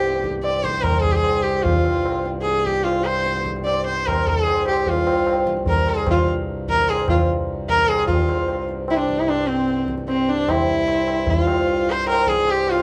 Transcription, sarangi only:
Already playing: G4
0.43 D5
0.63 C5
0.82 A#4
1.01 G#4
1.11 G4 G#4
1.42 G4
1.63 F4
2.42 G#4
2.65 G4
2.83 F4
3.05 C5
3.65 D5
3.86 C5
4.06 A#4
4.28 G#4
4.67 G4
4.88 F4
5.68 A#4
5.89 G#4
6.10 F4
6.69 A#4
6.89 G#4
7.09 F4
7.69 A#4
7.88 G#4
8.07 F4
8.90 E4
8.99 D4
9.19 E4
9.29 D4
9.47 C4
10.08 C4
10.29 D4
10.50 E4
11.30 E4
11.41 F4
11.91 C5
12.09 A#4
12.28 G#4
12.50 G4
12.70 F4

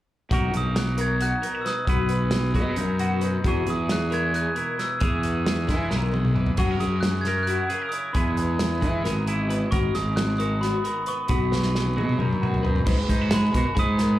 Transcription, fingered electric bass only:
0.31 B1
0.54 B1
1.87 B1
2.55 B2
2.77 F#2
3.45 E2
3.67 E2
5.01 E2
5.69 E3
5.91 B1
6.58 F#2
6.80 F#2
8.15 E2
8.82 E3
9.04 G#1
9.72 G#1
9.95 G#1
11.29 B1
11.97 B2
12.19 F#2
12.86 G#2
13.09 G#2
13.55 B2
13.76 G#2

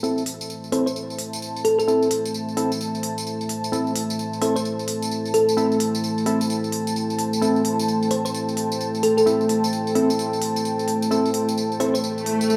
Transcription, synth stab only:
0.03 C4 E4 A4
0.72 C4 E4 A4
1.88 C4 E4 A4
2.57 C4 E4 A4
3.72 C4 E4 A4
4.41 C4 E4 A4
5.57 C4 E4 A4
6.26 C4 E4 A4
7.42 C4 E4 A4
9.26 C4 E4 A4
9.95 C4 E4 A4
11.11 C4 E4 A4
11.80 C4 E4 A4

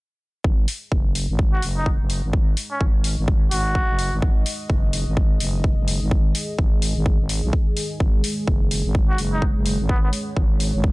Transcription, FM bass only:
0.44 G#1
0.92 F#1
1.30 G#1
1.63 F#1
2.00 F#1
2.24 G#1
2.81 G#1
3.19 G#1
3.51 G#1
3.89 F#1
4.13 G#1
4.22 G#1
4.70 F#1
5.08 G#1
5.40 F#1
5.78 F#1
6.02 G#1
6.59 G#1
6.97 G#1
7.20 G#1
7.44 B1
8.00 G#1
8.48 F#1
8.86 G#1
9.18 F#1
9.56 F#1
9.80 G#1
10.37 G#1
10.75 G#1

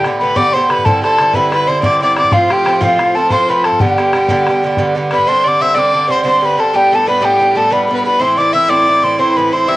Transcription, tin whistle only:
0.20 B5
0.36 D6
0.53 C6
0.72 B5
0.85 A5
1.04 A5
1.35 B5
1.53 B5
1.69 C6
1.86 D6
2.03 D6
2.18 D6
2.33 F5
2.53 G5
2.82 F5
3.15 A5
3.32 C6
3.50 B5
3.65 A5
3.81 G5
5.14 B5
5.29 C6
5.48 D6
5.62 E6
5.79 D6
6.11 C6
6.27 C6
6.45 B5
6.60 A5
6.76 G5
6.95 A5
7.09 B5
7.25 G5
7.57 A5
7.73 B5
7.85 B5
7.98 B5
8.06 B5
8.21 C6
8.38 D6
8.55 E6
8.70 D6
9.04 C6
9.20 C6
9.37 B5
9.53 C6
9.68 E6

